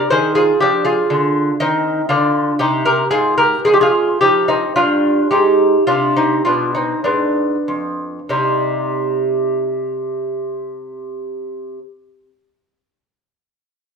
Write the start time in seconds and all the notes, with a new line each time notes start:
Already playing: A#4
0.10 D#3 G#4 C5
0.35 F4 G#4
0.60 F3 D4 G4
0.85 F4 G#4
1.10 D3
1.60 D#3 C4 D#4
2.09 D3 D4 F4
2.59 C3 D#4 G4
2.85 G4 A#4
3.11 G#2 F4 G#4
3.38 G4 A#4
3.65 F2 G#4
3.74 G4
3.81 F4 G#4
4.21 F3 D#4 G4
4.48 C4 D#4
4.76 G2 D4 F4
5.31 G#2 D#4 G4
5.87 C3 D4 F4
6.16 C4 D#4
6.45 B2 D4 F4
6.75 C4 D#4
7.04 G#2 B3 D4
7.68 F2
8.29 C3 G3 D#4